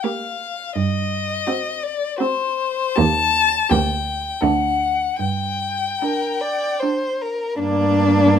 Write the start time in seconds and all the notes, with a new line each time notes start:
0.02 A#3 G4 F5
0.75 G2 D#5
1.47 C4 F#4
1.83 D5
2.18 C4 F#4 C5
2.95 D#2 A#3 G4 A5
3.70 D2 A#3 G4 G5
4.41 D2 D4 A4 F#5
5.19 G2 G5
6.00 D4 A#4
6.41 D5
6.80 D4 C5
7.22 A#4
7.59 G2 A#3 D4 D5